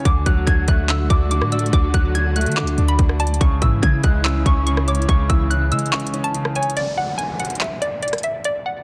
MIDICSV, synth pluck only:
0, 0, Header, 1, 2, 480
1, 0, Start_track
1, 0, Tempo, 419580
1, 59, Time_signature, 4, 2, 24, 8
1, 10104, End_track
2, 0, Start_track
2, 0, Title_t, "Synth pluck"
2, 0, Program_c, 0, 84
2, 61, Note_on_c, 0, 86, 87
2, 269, Note_off_c, 0, 86, 0
2, 300, Note_on_c, 0, 90, 82
2, 509, Note_off_c, 0, 90, 0
2, 533, Note_on_c, 0, 92, 85
2, 745, Note_off_c, 0, 92, 0
2, 784, Note_on_c, 0, 90, 77
2, 991, Note_off_c, 0, 90, 0
2, 1028, Note_on_c, 0, 88, 78
2, 1233, Note_off_c, 0, 88, 0
2, 1259, Note_on_c, 0, 86, 82
2, 1468, Note_off_c, 0, 86, 0
2, 1501, Note_on_c, 0, 86, 82
2, 1709, Note_off_c, 0, 86, 0
2, 1742, Note_on_c, 0, 88, 77
2, 1950, Note_off_c, 0, 88, 0
2, 1985, Note_on_c, 0, 86, 92
2, 2191, Note_off_c, 0, 86, 0
2, 2222, Note_on_c, 0, 90, 85
2, 2430, Note_off_c, 0, 90, 0
2, 2458, Note_on_c, 0, 92, 91
2, 2668, Note_off_c, 0, 92, 0
2, 2702, Note_on_c, 0, 90, 80
2, 2910, Note_off_c, 0, 90, 0
2, 2934, Note_on_c, 0, 86, 82
2, 3275, Note_off_c, 0, 86, 0
2, 3301, Note_on_c, 0, 83, 80
2, 3639, Note_off_c, 0, 83, 0
2, 3658, Note_on_c, 0, 81, 88
2, 3868, Note_off_c, 0, 81, 0
2, 3897, Note_on_c, 0, 85, 84
2, 4107, Note_off_c, 0, 85, 0
2, 4138, Note_on_c, 0, 88, 84
2, 4348, Note_off_c, 0, 88, 0
2, 4375, Note_on_c, 0, 92, 89
2, 4586, Note_off_c, 0, 92, 0
2, 4618, Note_on_c, 0, 90, 83
2, 4828, Note_off_c, 0, 90, 0
2, 4858, Note_on_c, 0, 88, 85
2, 5068, Note_off_c, 0, 88, 0
2, 5106, Note_on_c, 0, 85, 82
2, 5312, Note_off_c, 0, 85, 0
2, 5337, Note_on_c, 0, 85, 95
2, 5547, Note_off_c, 0, 85, 0
2, 5585, Note_on_c, 0, 86, 89
2, 5792, Note_off_c, 0, 86, 0
2, 5817, Note_on_c, 0, 85, 97
2, 6027, Note_off_c, 0, 85, 0
2, 6057, Note_on_c, 0, 88, 80
2, 6267, Note_off_c, 0, 88, 0
2, 6297, Note_on_c, 0, 90, 91
2, 6507, Note_off_c, 0, 90, 0
2, 6541, Note_on_c, 0, 88, 83
2, 6750, Note_off_c, 0, 88, 0
2, 6773, Note_on_c, 0, 85, 81
2, 7115, Note_off_c, 0, 85, 0
2, 7138, Note_on_c, 0, 81, 83
2, 7477, Note_off_c, 0, 81, 0
2, 7504, Note_on_c, 0, 80, 74
2, 7711, Note_off_c, 0, 80, 0
2, 7742, Note_on_c, 0, 74, 84
2, 7950, Note_off_c, 0, 74, 0
2, 7980, Note_on_c, 0, 78, 84
2, 8189, Note_off_c, 0, 78, 0
2, 8211, Note_on_c, 0, 80, 83
2, 8424, Note_off_c, 0, 80, 0
2, 8464, Note_on_c, 0, 78, 74
2, 8671, Note_off_c, 0, 78, 0
2, 8708, Note_on_c, 0, 76, 75
2, 8914, Note_off_c, 0, 76, 0
2, 8942, Note_on_c, 0, 74, 82
2, 9150, Note_off_c, 0, 74, 0
2, 9182, Note_on_c, 0, 74, 84
2, 9390, Note_off_c, 0, 74, 0
2, 9424, Note_on_c, 0, 76, 77
2, 9631, Note_off_c, 0, 76, 0
2, 9669, Note_on_c, 0, 74, 88
2, 9874, Note_off_c, 0, 74, 0
2, 9905, Note_on_c, 0, 78, 83
2, 10104, Note_off_c, 0, 78, 0
2, 10104, End_track
0, 0, End_of_file